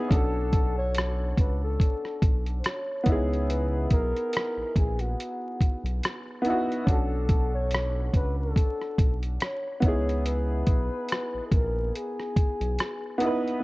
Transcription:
0.00 0.12 B3 medium
0.00 0.13 D#4 medium
0.00 0.12 E4 medium
0.00 0.12 G#4 loud
0.08 1.33 B1 loud
0.08 1.22 C#4 medium
0.08 1.23 D4 medium
0.08 0.73 A4 loud
0.08 kick loud
0.08 closed hi-hat medium
0.13 1.25 F#4 medium
0.13 1.26 A4 medium
0.53 kick medium
0.53 closed hi-hat medium
0.78 1.34 C#5 loud
0.95 cross-stick loud
0.95 closed hi-hat medium
1.37 1.77 C#2 loud
1.37 1.60 B4 medium
1.37 kick medium
1.37 closed hi-hat medium
1.63 2.43 A4 medium
1.80 kick medium
1.80 closed hi-hat medium
2.05 cross-stick soft
2.22 2.62 B1 medium
2.22 kick loud
2.22 closed hi-hat medium
2.46 closed hi-hat soft
2.59 2.68 C5 medium
2.64 3.08 C#5 loud
2.64 cross-stick loud
2.64 closed hi-hat medium
3.04 3.87 C#2 loud
3.04 4.41 B3 medium
3.04 4.43 D#4 medium
3.04 kick loud
3.04 closed hi-hat medium
3.09 4.44 E4 medium
3.09 4.45 G#4 medium
3.09 3.51 C#5 medium
3.33 closed hi-hat soft
3.50 3.92 B4 medium
3.50 closed hi-hat medium
3.90 4.14 B1 medium
3.90 4.79 A#4 loud
3.90 kick medium
3.90 closed hi-hat medium
4.17 closed hi-hat soft
4.33 cross-stick loud
4.33 closed hi-hat medium
4.57 4.64 A#1 soft
4.76 5.16 A#1 medium
4.76 5.02 G#4 medium
4.76 kick medium
4.76 closed hi-hat medium
4.99 5.85 F#4 medium
4.99 closed hi-hat soft
5.20 closed hi-hat medium
5.61 kick medium
5.61 closed hi-hat medium
5.84 6.01 B1 loud
5.84 closed hi-hat soft
6.03 cross-stick loud
6.03 closed hi-hat medium
6.42 6.73 B3 medium
6.42 6.74 D#4 medium
6.42 closed hi-hat medium
6.47 6.75 E4 medium
6.47 6.77 F#4 loud
6.72 closed hi-hat soft
6.84 8.10 B1 loud
6.84 7.98 C#4 medium
6.84 8.00 D4 medium
6.84 7.50 A4 medium
6.84 kick loud
6.84 closed hi-hat medium
6.89 8.01 F#4 medium
6.89 8.02 A4 medium
7.29 kick medium
7.29 closed hi-hat medium
7.54 8.10 C#5 loud
7.71 cross-stick loud
7.71 closed hi-hat medium
8.14 8.54 C#2 medium
8.14 8.37 B4 loud
8.14 kick medium
8.14 closed hi-hat medium
8.39 9.19 A4 medium
8.56 kick medium
8.56 closed hi-hat medium
8.81 cross-stick soft
8.98 9.38 B1 medium
8.98 kick loud
8.98 closed hi-hat medium
9.23 closed hi-hat soft
9.40 9.80 C#5 loud
9.40 cross-stick loud
9.40 closed hi-hat medium
9.80 10.63 C#2 loud
9.80 11.18 B3 medium
9.80 11.19 D#4 medium
9.80 10.23 C#5 loud
9.80 kick loud
9.80 closed hi-hat medium
9.85 11.20 E4 medium
9.85 11.22 G#4 medium
10.09 closed hi-hat soft
10.26 11.42 B4 loud
10.26 closed hi-hat medium
10.67 10.90 B1 medium
10.67 kick medium
10.67 closed hi-hat medium
11.09 cross-stick loud
11.09 closed hi-hat medium
11.34 11.41 A#1 soft
11.47 11.55 A4 medium
11.52 11.91 A#1 medium
11.52 11.97 A#4 medium
11.52 kick medium
11.52 closed hi-hat medium
11.95 13.22 G#4 medium
11.95 closed hi-hat medium
12.20 cross-stick soft
12.36 kick medium
12.36 closed hi-hat medium
12.61 12.78 B1 loud
12.61 closed hi-hat soft
12.79 cross-stick loud
12.79 closed hi-hat medium
13.18 13.49 B3 medium
13.18 13.50 D#4 medium
13.18 closed hi-hat medium
13.24 13.52 E4 medium
13.24 13.53 B4 loud
13.48 closed hi-hat soft
13.60 13.63 B3 medium

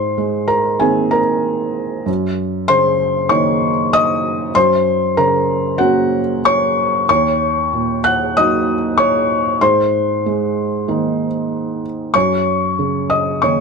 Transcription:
0.00 2.03 G#2 medium
0.00 0.45 C5 medium
0.00 0.49 C6 medium
0.18 1.19 G#3 medium
0.48 0.78 A#4 medium
0.48 0.80 A#5 medium
0.80 2.03 D#3 soft
0.80 2.04 A#3 soft
0.80 2.03 C4 medium
0.80 1.11 G#4 medium
0.80 1.12 G#5 medium
1.11 2.03 A#4 medium
1.11 2.06 A#5 medium
2.06 4.51 F#2 medium
2.68 3.68 C#3 medium
2.68 3.27 C5 medium
2.68 3.31 C6 loud
3.29 4.51 D#3 medium
3.29 4.51 A#3 medium
3.29 4.51 D#4 medium
3.29 3.89 C#5 medium
3.29 3.92 C#6 medium
3.93 4.52 D#5 medium
3.93 4.55 D#6 loud
4.55 7.04 F#2 medium
4.55 5.13 C5 medium
4.55 5.16 C6 loud
5.17 6.19 C#3 medium
5.17 5.75 A#4 medium
5.17 5.79 A#5 medium
5.78 7.04 F#3 medium
5.78 7.04 A#3 medium
5.78 7.05 C#4 medium
5.78 6.41 F#4 medium
5.78 6.45 F#5 medium
6.45 7.05 C#5 medium
6.45 7.08 C#6 loud
7.09 9.57 D#2 medium
7.09 7.99 C#5 medium
7.09 8.03 C#6 loud
7.73 8.72 A#2 medium
8.04 8.33 F#5 medium
8.04 8.34 F#6 medium
8.37 9.58 F#3 medium
8.37 9.59 A#3 medium
8.37 9.59 D#4 medium
8.37 8.95 D#5 medium
8.37 8.98 D#6 loud
8.98 9.58 C#5 medium
8.98 9.61 C#6 loud
9.61 12.12 G#2 medium
9.61 11.80 C5 medium
9.61 11.83 C6 loud
10.26 11.26 G#3 soft
10.88 12.11 D#3 soft
10.88 12.11 A#3 soft
10.88 12.11 D#4 soft
12.14 13.60 F#2 medium
12.14 13.06 C#5 medium
12.14 13.10 C#6 loud
12.79 13.60 C#3 soft
13.10 13.40 D#5 medium
13.10 13.42 D#6 medium
13.42 13.60 D#3 soft
13.42 13.60 A#3 soft
13.42 13.60 D#4 soft
13.42 13.60 C#5 medium
13.42 13.60 C#6 medium

